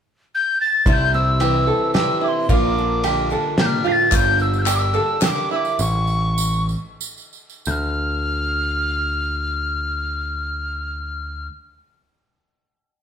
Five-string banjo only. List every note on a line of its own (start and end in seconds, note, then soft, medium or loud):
0.86 1.39 E4 medium
1.41 1.67 G4 medium
1.67 1.94 A4 medium
1.94 2.21 G4 medium
2.21 2.48 E4 medium
2.49 3.02 F4 medium
3.04 3.30 G4 medium
3.31 3.58 A4 medium
3.59 3.85 G4 medium
3.84 4.11 F4 medium
4.12 4.65 F4 medium
4.67 4.94 G4 medium
4.94 5.22 A4 medium
5.23 5.50 G4 medium
5.51 5.79 E4 medium